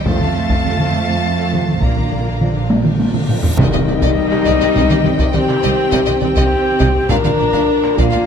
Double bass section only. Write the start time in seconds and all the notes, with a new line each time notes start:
0.07 F2
1.83 A#1
3.59 C2
3.88 C2
4.46 C2
4.76 C2
5.05 C2
5.34 C2
5.63 C2
5.93 C2
6.22 C2
6.81 C2
7.10 A#1
7.39 A#1
7.98 A#1